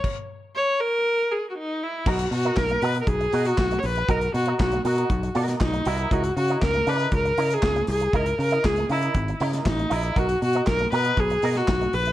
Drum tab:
CC |x---------------|x---------------|----------------|----------------|
HH |----------------|-xox-xoxxxox-xox|xxox-xoxxxox-xox|xxox-xoxxxox-xox|
CP |----------------|----x-------x---|----x-------x---|----x-------x---|
SD |----------------|----o-------o---|----o------oo---|----o-------o---|
BD |o---------------|o---o---o---o---|o---o---o---o---|o---o---o---o---|

CC |----------------|----------------|
HH |xxox-xoxxxox-xox|xxox-xoxxxox-xox|
CP |----x-------x---|----x-------x---|
SD |----o------oo---|----o------oo---|
BD |o---o---o---o---|o---o---o---o---|